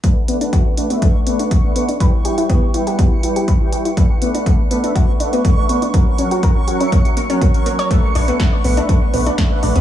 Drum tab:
HH |x-xxx-xxx-xxx-xx|x-xxx-xxx-xxx-xx|x-xxx-xxx-xxx-xx|x-xxx-xxxxxxxxxx|
SD |----------------|----------------|----------------|----------------|
BD |o---o---o---o---|o---o---o---o---|o---o---o---o---|o---o---o---o---|

HH |x-oxx-oxx-oxx-ox|
SD |----o-------o---|
BD |o---o---o---o---|